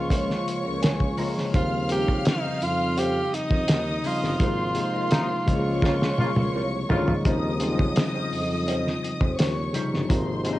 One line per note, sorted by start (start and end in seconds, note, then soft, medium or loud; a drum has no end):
0.00 0.38 C#2 loud
0.00 1.09 C#3 medium
0.00 1.09 F3 medium
0.00 1.09 G#3 medium
0.00 1.09 A#3 medium
0.00 1.10 F4 medium
0.00 1.19 F4 medium
0.00 1.51 C#5 medium
0.00 1.51 C#6 medium
0.10 0.32 F4 medium
0.10 0.32 A#4 medium
0.10 0.33 C#5 medium
0.10 kick loud
0.10 closed hi-hat medium
0.30 snare soft
0.47 0.54 C#2 soft
0.47 muted clean electric guitar stroke soft
0.47 closed hi-hat medium
0.64 1.28 C#2 medium
0.64 0.81 F4 soft
0.64 0.82 A#4 soft
0.64 0.81 C#5 medium
0.82 1.04 F4 medium
0.82 1.00 A#4 medium
0.82 0.99 C#5 medium
0.82 1.16 G#5 medium
0.82 snare loud
0.82 closed hi-hat loud
1.00 muted clean electric guitar stroke soft
1.00 kick medium
1.17 1.51 C#3 medium
1.17 1.52 F3 medium
1.17 1.52 G#3 medium
1.17 1.52 A#3 medium
1.17 1.35 F4 medium
1.17 1.52 F4 loud
1.17 1.35 A#4 medium
1.17 1.34 C#5 medium
1.17 1.52 A#5 medium
1.17 open hi-hat medium
1.36 muted clean electric guitar stroke soft
1.36 snare soft
1.53 2.17 D#2 loud
1.53 1.87 C#3 medium
1.53 1.88 F3 medium
1.53 1.88 G3 medium
1.53 1.88 C4 medium
1.53 1.75 C#4 medium
1.53 1.88 D#4 medium
1.53 1.88 F4 loud
1.53 1.71 G4 medium
1.53 1.70 C5 medium
1.53 3.30 F5 medium
1.53 3.30 F6 medium
1.53 kick loud
1.53 closed hi-hat medium
1.71 muted clean electric guitar stroke soft
1.89 3.24 C#3 medium
1.89 3.24 F3 medium
1.89 3.24 G3 medium
1.89 3.24 C4 medium
1.89 3.25 D#4 medium
1.89 2.29 G4 loud
1.89 muted clean electric guitar stroke soft
1.89 closed hi-hat medium
2.07 2.24 C#4 soft
2.07 2.25 G4 medium
2.07 2.24 C#5 medium
2.07 kick medium
2.25 2.64 D#4 loud
2.25 muted clean electric guitar stroke soft
2.25 snare loud
2.25 closed hi-hat medium
2.43 2.51 F2 soft
2.43 2.60 C#4 medium
2.43 2.60 G4 medium
2.43 2.61 C5 medium
2.61 3.25 F2 loud
2.61 3.00 F4 loud
2.61 muted clean electric guitar stroke soft
2.61 closed hi-hat medium
2.79 muted clean electric guitar stroke soft
2.97 3.18 C#4 medium
2.97 3.19 G4 medium
2.97 3.36 G4 loud
2.97 3.19 C5 medium
2.97 closed hi-hat medium
3.33 3.40 F2 soft
3.33 4.08 D#4 loud
3.33 4.39 D#5 medium
3.33 4.38 D#6 medium
3.33 muted clean electric guitar stroke soft
3.33 closed hi-hat medium
3.50 3.67 F2 medium
3.50 3.67 C#4 soft
3.50 3.68 G4 medium
3.50 3.67 C5 medium
3.50 kick loud
3.68 4.00 D#2 loud
3.68 3.90 C#4 medium
3.68 3.87 G4 medium
3.68 3.85 C5 medium
3.68 snare loud
3.68 closed hi-hat loud
3.87 muted clean electric guitar stroke soft
4.04 4.38 C#3 medium
4.04 4.38 F3 medium
4.04 4.38 G3 medium
4.04 4.39 C4 medium
4.04 4.21 C#4 soft
4.04 4.39 D#4 medium
4.04 6.91 F4 loud
4.04 4.22 G4 medium
4.04 4.21 C5 medium
4.04 open hi-hat medium
4.22 4.38 G1 medium
4.22 snare soft
4.39 4.79 G#1 loud
4.39 4.73 C3 medium
4.39 4.74 F3 medium
4.39 4.74 G#3 medium
4.39 4.74 A#3 medium
4.39 4.74 D#4 medium
4.39 4.62 F4 medium
4.39 4.58 A#4 medium
4.39 5.46 C5 medium
4.39 4.57 C5 medium
4.39 5.46 C6 medium
4.39 kick loud
4.39 closed hi-hat medium
4.75 5.47 C3 medium
4.75 5.46 F3 medium
4.75 5.46 G#3 medium
4.75 5.47 A#3 medium
4.75 5.48 D#4 medium
4.75 muted clean electric guitar stroke soft
4.75 closed hi-hat medium
4.93 5.10 F4 medium
4.93 5.11 A#4 medium
4.93 5.10 D#5 medium
5.11 5.27 C3 medium
5.11 5.27 A#3 medium
5.11 5.27 D#4 medium
5.11 snare loud
5.11 closed hi-hat medium
5.29 5.37 C#2 soft
5.29 5.46 F4 medium
5.29 5.46 A#4 medium
5.29 5.48 C5 medium
5.46 6.11 C#2 loud
5.46 6.80 C#3 loud
5.46 6.81 F3 medium
5.46 6.81 G#3 medium
5.46 6.81 A#3 medium
5.46 5.55 E4 medium
5.46 7.22 C#5 medium
5.46 7.22 C#6 loud
5.46 muted clean electric guitar stroke soft
5.46 kick medium
5.46 closed hi-hat medium
5.55 6.85 F4 medium
5.65 muted clean electric guitar stroke soft
5.82 5.94 C#3 medium
5.82 5.94 A#3 medium
5.82 6.04 F4 medium
5.82 5.94 F4 medium
5.82 6.05 A#4 medium
5.82 6.05 C#5 medium
5.82 kick loud
5.82 snare medium
6.02 snare medium
6.18 6.26 C#2 soft
6.18 6.30 C#3 medium
6.18 6.30 A#3 medium
6.18 6.30 F4 medium
6.18 muted clean electric guitar stroke soft
6.18 high tom medium
6.36 6.52 C#2 medium
6.36 6.52 F4 soft
6.36 6.53 A#4 soft
6.36 6.53 C#5 medium
6.36 high tom medium
6.54 6.85 C2 medium
6.54 6.75 F4 medium
6.54 6.72 A#4 medium
6.54 6.71 C#5 medium
6.72 muted clean electric guitar stroke soft
6.89 7.05 D2 loud
6.89 7.23 C#3 medium
6.89 7.12 C#3 medium
6.89 7.23 F3 medium
6.89 7.24 G#3 medium
6.89 7.12 A#3 medium
6.89 7.24 A#3 medium
6.89 7.24 D#4 loud
6.89 7.06 F4 medium
6.89 7.12 F4 medium
6.89 7.07 A#4 medium
6.89 7.06 C#5 medium
6.89 floor tom loud
7.08 muted clean electric guitar stroke soft
7.08 floor tom medium
7.25 7.88 D#2 loud
7.25 7.59 C#3 medium
7.25 7.59 F3 medium
7.25 7.59 G3 medium
7.25 7.59 C4 medium
7.25 7.47 C#4 medium
7.25 7.60 D#4 loud
7.25 7.43 G4 medium
7.25 7.42 C5 medium
7.25 9.35 D#5 medium
7.25 9.35 D#6 loud
7.25 kick loud
7.25 closed hi-hat medium
7.43 muted clean electric guitar stroke soft
7.60 8.94 C#3 loud
7.60 8.94 F3 medium
7.60 7.68 F#3 medium
7.60 8.95 C4 medium
7.60 8.95 F4 loud
7.60 muted clean electric guitar stroke soft
7.60 closed hi-hat medium
7.68 8.98 G3 medium
7.78 7.95 C#4 medium
7.78 7.96 G4 medium
7.78 7.95 C#5 medium
7.78 kick medium
7.96 muted clean electric guitar stroke soft
7.96 snare loud
7.96 closed hi-hat loud
8.14 8.22 F2 soft
8.14 8.31 C#4 medium
8.14 8.31 G4 medium
8.14 8.32 C5 medium
8.32 8.95 F2 loud
8.32 muted clean electric guitar stroke soft
8.32 open hi-hat soft
8.50 muted clean electric guitar stroke soft
8.67 8.89 C#4 medium
8.67 8.89 G4 medium
8.67 8.90 C5 medium
8.67 closed hi-hat medium
8.87 snare soft
9.03 9.11 F2 soft
9.03 muted clean electric guitar stroke soft
9.03 closed hi-hat medium
9.21 9.37 F2 medium
9.21 9.37 C#4 soft
9.21 9.38 G4 medium
9.21 9.38 C5 medium
9.21 kick loud
9.38 9.71 D#2 loud
9.38 9.60 C#4 medium
9.38 9.57 G4 medium
9.38 9.55 C5 medium
9.38 10.09 C#5 medium
9.38 10.09 C#6 medium
9.38 snare loud
9.38 closed hi-hat loud
9.57 muted clean electric guitar stroke soft
9.73 10.08 C3 medium
9.73 10.07 C#3 medium
9.73 10.08 F3 medium
9.73 10.08 G3 medium
9.73 9.91 C#4 soft
9.73 10.08 D#4 loud
9.73 9.92 G4 medium
9.73 9.91 C5 medium
9.73 closed hi-hat medium
9.93 10.08 G1 loud
9.93 snare soft
10.09 10.59 G#1 loud
10.09 10.43 C3 medium
10.09 10.43 F3 medium
10.09 10.43 G#3 medium
10.09 10.44 A#3 medium
10.09 10.44 D#4 medium
10.09 10.31 F4 medium
10.09 10.28 A#4 medium
10.09 10.59 C5 medium
10.09 10.27 C5 medium
10.09 10.59 C6 medium
10.09 kick loud
10.09 closed hi-hat medium
10.28 muted clean electric guitar stroke soft
10.44 10.59 C3 medium
10.44 10.59 F3 medium
10.44 10.59 G#3 medium
10.44 10.59 A#3 medium
10.44 10.53 C#4 medium
10.44 muted clean electric guitar stroke soft
10.44 closed hi-hat medium
10.53 10.59 D#4 loud